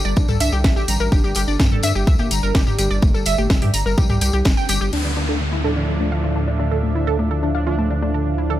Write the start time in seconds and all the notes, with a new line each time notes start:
Already playing: D3 D4
0.05 G1 G3 D5, tambourine
0.16 C2 D4, kick, tambourine
0.28 C2 G3 A4, mid tom, tambourine
0.40 C2 D4 E5, open hi-hat, tambourine
0.52 C2 G3 G4, tambourine
0.64 A1 G3 E5, kick, snare, tambourine
0.76 A1 G4, tambourine
0.88 A1 G3 A#5, open hi-hat, tambourine
1.00 A1 G3 A#4, tambourine
1.12 G1 D4 G4, kick, tambourine
1.24 G1 G3 G4, tambourine
1.35 G1 G3 G4, open hi-hat, tambourine
1.48 G1 D4 D5, tambourine
1.60 G2 G3, kick, snare, tambourine
1.72 G1 G3 A4, mid tom
1.83 G2 D4 E5, open hi-hat, tambourine
1.95 G1 G3 G4, tambourine
2.07 D2 G3 E5, kick, tambourine
2.19 G1 A#3 G4, tambourine
2.31 G1 G3 A#5, open hi-hat, tambourine
2.43 G1 G3 A#4, tambourine
2.55 G1 G3 G4, kick, snare, tambourine
2.67 G1 G4, mid tom, tambourine
2.79 G1 G3 G4, open hi-hat, tambourine
2.91 G1 G3 D5, tambourine
3.02 G1 A3, kick, tambourine
3.14 G1 G3 A4, tambourine
3.26 G1 G3 E5, open hi-hat, tambourine
3.38 G1 A3 G4, tambourine
3.50 G1 G3 E5, kick, snare, tambourine
3.62 G2 G3 G4, mid tom, open hi-hat
3.74 G1 A#5, open hi-hat, tambourine
3.86 G1 G3 A#4, tambourine
3.97 C2 G3 G4, kick, tambourine
4.09 C2 G3 G4, mid tom, tambourine
4.21 C2 G3 G4, open hi-hat, tambourine
4.33 C2 G3 G4, tambourine
4.45 G1 G3, kick, snare, tambourine
4.57 G1 G5, tambourine
4.69 G1 G3 G4, open hi-hat, tambourine
4.81 G1 G3 G4, tambourine
4.93 D2 D4 A4 E5 F5, crash, downlifter
5.05 D3 D4
5.17 D3 D4
5.29 D4 A4
5.41 D3
5.52 D3 E4
5.64 A2 F3 D4 A4
5.76 A2 D3 F3 D4
5.88 D3 A4
6.00 A3 D4
6.12 D3 F5
6.24 D3 F4
6.36 D3 D4
6.48 D4
6.59 D3 D4
6.71 D3 A4
6.83 A3
6.95 D3 E4
7.07 D3 A4
7.19 A3 D4
7.31 D3 A4
7.43 D3 D4
7.55 A2 F3 D4 F5
7.67 A2 D3 F3 D4 F4
7.78 A3 D4
7.91 D3 D4
8.02 A3 D4
8.14 D3 A4
8.26 D3
8.38 E4
8.50 D3 A4